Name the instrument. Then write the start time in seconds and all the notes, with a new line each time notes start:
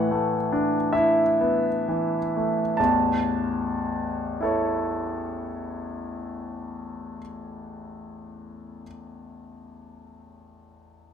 grand piano
Already playing: A2 E3 A3 B3 F#5
0.11 A3
0.52 D4
0.93 E4 E5
1.41 B3
1.88 E3
2.37 A3
2.77 A1 E2 A5
4.41 E4 A4 C#5